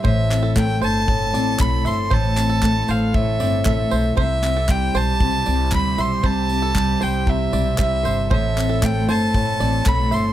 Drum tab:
TB |-x-x-x-x|-x-x-x-x|-x-x-x-x|-x-x-x-x|
CP |-xx---x-|-xx---x-|-xx---x-|--x---x-|
BD |o-o-o-o-|o-o-o-o-|o-o-o-o-|o-o-o-o-|

TB |-x-x-x-x|
CP |-xx---x-|
BD |o-o-o-o-|